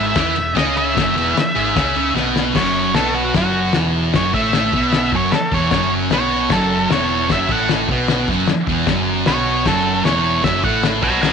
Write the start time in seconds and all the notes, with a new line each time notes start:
Already playing: G#1 G#2 G#3 E5
0.15 E2 E3 E4, kick, snare, ride
0.36 E1 E2, ride
0.55 C#2 C#3 C#4 D#5, snare, ride
0.77 E5, ride
0.94 F#1 F#2 F#3, kick, snare, ride
1.16 E1 E2 E3, ride
1.35 muted distorted electric guitar stroke, muted picked electric bass stroke, snare, ride
1.55 G#1 G#2 G#3, ride
1.75 C#2 C#3 C#4, kick, snare, ride
1.95 C#2 C#3 C#4, ride
2.14 B1 B2 B3, snare
2.36 snare
2.53 F#1 F#2 F#3 C#5, kick, snare, crash
2.93 B1 B2 B3 A4, snare, crash
3.15 F#4
3.34 F#1 F#2 F#3 F#4, kick, snare, crash
3.73 E1 E2 E3, snare, crash
4.13 F#1 F#2 F#3 C#5, kick, snare, crash
4.33 A1 A2 A3 E5, kick
4.53 snare, crash
4.73 B1 B2 B3, kick
4.92 snare, crash
5.12 F#1 F#2 F#3 C#5, kick
5.32 A4, snare, crash
5.52 E1 E2 E3 C#5, kick
5.71 F#1 F#2 F#3, kick, snare, crash
6.10 B1 B2 B3 C#5, snare, crash
6.50 F#1 F#2 F#3 A4, kick, snare, crash
6.89 E1 E2 E3 C#5, snare, crash
7.29 F#1 F#2 F#3 E5, kick, snare, crash
7.49 A1 A2 A3 F#5, kick
7.69 snare, crash
7.88 B1 B2 B3, kick
8.08 snare, crash
8.28 F#1 F#2 F#3, kick
8.47 snare, crash
8.67 E1 E2 E3, kick
8.87 F#1 F#2 F#3, kick, snare, crash
9.26 B1 B2 B3 C#5, snare, crash
9.65 F#1 F#2 F#3 A4, kick, snare, crash
10.04 E1 E2 E3 C#5, snare, crash
10.43 F#1 F#2 F#3 E5, kick, snare, crash
10.63 A1 A2 A3 F#5, kick
10.83 snare, crash
11.03 B1 B2 B3 F#5 A#5, kick
11.21 F#5 A#5, snare, crash